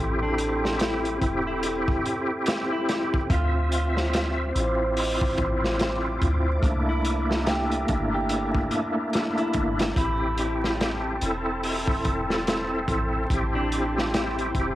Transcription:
Already playing: 808-style bass A1, tonewheel organ C4 E4, analog synth pad A4 G5 C6
0.01 tonewheel organ G4
0.23 clean electric guitar D4
0.38 closed hi-hat
0.65 snare
0.80 clean electric guitar E4, snare, closed hi-hat
1.05 closed hi-hat
1.18 tonewheel organ C4
1.22 808-style bass E1, tonewheel organ E4, kick, closed hi-hat
1.26 tonewheel organ G4
1.47 clean electric guitar E4
1.63 closed hi-hat
1.88 kick
2.06 closed hi-hat
2.46 snare, closed hi-hat
2.73 clean electric guitar E4
2.89 snare, closed hi-hat
3.14 kick
3.25 tonewheel organ C4
3.30 808-style bass D2, clean electric guitar F4, analog synth pad C5 D6, tonewheel organ E5, kick, closed hi-hat
3.34 tonewheel organ F4
3.72 clean electric guitar F4, closed hi-hat
3.97 snare
4.13 snare, closed hi-hat
4.51 tonewheel organ C4
4.55 808-style bass A1, tonewheel organ E4, closed hi-hat
4.60 tonewheel organ F4
4.97 open hi-hat
5.21 kick
5.38 808-style bass A1, kick, closed hi-hat
5.64 snare
5.79 snare, closed hi-hat
6.22 808-style bass D2, kick, closed hi-hat
6.59 808-style bass C2, tonewheel organ A3 A#3, kick
6.64 tonewheel organ D4, analog synth pad E5 A5 A#5, closed hi-hat
6.68 tonewheel organ E4
6.89 clean electric guitar E4
7.05 closed hi-hat
7.31 snare
7.46 clean electric guitar G4, snare, closed hi-hat
7.71 closed hi-hat
7.83 tonewheel organ A3 A#3
7.88 808-style bass G1, tonewheel organ D4 E4, kick, closed hi-hat
8.14 clean electric guitar G4
8.29 closed hi-hat
8.55 kick
8.71 closed hi-hat
9.13 snare, closed hi-hat
9.38 clean electric guitar E4, closed hi-hat
9.53 808-style bass G1, kick, closed hi-hat
9.79 snare, closed hi-hat
9.92 808-style bass A1, tonewheel organ C4, kick
9.97 tonewheel organ E4, clean electric guitar E4, analog synth pad G5 C6, closed hi-hat
10.01 tonewheel organ G4
10.38 clean electric guitar E4, closed hi-hat
10.64 snare
10.81 snare, closed hi-hat
11.17 tonewheel organ C4
11.21 808-style bass E1, tonewheel organ E4, closed hi-hat
11.26 tonewheel organ A4
11.63 open hi-hat
11.87 kick
12.05 808-style bass E1, kick, closed hi-hat
12.30 snare
12.47 snare, closed hi-hat
12.88 808-style bass A1, kick, closed hi-hat
13.25 tonewheel organ C4
13.30 808-style bass A1, tonewheel organ E4, kick, closed hi-hat
13.34 tonewheel organ G4
13.55 clean electric guitar D4
13.72 closed hi-hat
13.98 snare
14.14 clean electric guitar E4, snare, closed hi-hat
14.38 closed hi-hat
14.51 808-style bass E1, tonewheel organ C4, kick
14.55 tonewheel organ E4, closed hi-hat
14.60 tonewheel organ G4

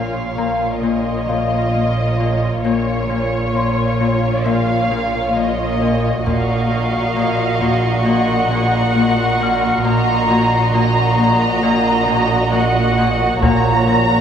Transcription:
Already playing: double bass section A#1, harp A#2 A#3, cello section A#2, violin section F4 C#5 F5
0.38 harp A#2, celesta A#4 A#5
0.83 harp A#2, violin section D#5
1.29 harp A#2, celesta F5
1.74 harp A#3
2.20 harp A#2
2.64 double bass section A#1, harp A#2, cello section A#2, violin section F4 C#5
3.09 harp A#2
3.54 harp A#2, celesta C6
4.00 harp A#2
4.45 harp A#2, violin section F5
4.91 harp A#2
5.36 harp A#3, violin section D#5
5.81 harp A#2
6.26 double bass section A#1, cello section A#2, harp A#2, violin section F#4 D#5 F5 A#5 C#6, taiko
6.70 harp A#2
7.16 harp A#2, violin section C6
7.61 harp A#2, taiko
8.05 harp A#2, violin section F#5
8.51 harp A#2
8.95 harp A#3
9.40 harp A#2, celesta F6
9.85 double bass section A#1, harp A#2, cello section A#2, violin section F#4 D#5 A#5
10.30 harp A#2
10.74 harp A#2, violin section A#5
11.19 harp A#2
11.63 harp A#2
12.08 harp A#2
12.53 harp A#3, violin section F#5
12.98 harp A#2
13.42 double bass section A#1, harp A#2, cello section A#2, violin section C#5 A#5, taiko
13.88 harp A#2

